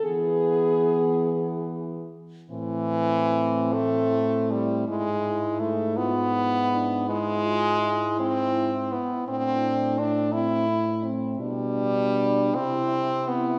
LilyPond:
<<
  \new Staff \with { instrumentName = "French horn" } { \time 6/8 \key a \minor \tempo 4. = 54 gis'2~ gis'8 r8 | e'2.~ | e'2. | e'2.~ |
e'2~ e'8 r8 | d'4. e'4. | }
  \new Staff \with { instrumentName = "French horn" } { \time 6/8 \key a \minor b2~ b8 r8 | c'2. | e'4. f'8 e'8 d'8 | e'8 f'8 e'4. r8 |
d'4. c'8 e'8 c'8 | d'4. e'4. | }
  \new Staff \with { instrumentName = "French horn" } { \time 6/8 \key a \minor b2~ b8 r8 | e4. a4 g8 | gis4 a8 b4. | gis4. c'4 b8 |
c'4 d'8 e'4 r8 | g4. c'4 b8 | }
  \new Staff \with { instrumentName = "French horn" } { \clef bass \time 6/8 \key a \minor e2~ e8 r8 | a,2. | gis,2.~ | gis,2~ gis,8 r8 |
a,2. | b,4. c4. | }
>>